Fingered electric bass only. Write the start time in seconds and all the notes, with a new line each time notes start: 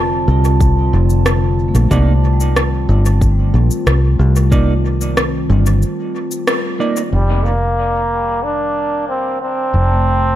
Already playing: F1
0.28 C2
0.93 F1
1.75 A#1
1.91 C2
2.89 G1
3.54 A#1
3.86 C2
4.19 C2
5.50 G1
7.13 F1
9.74 F1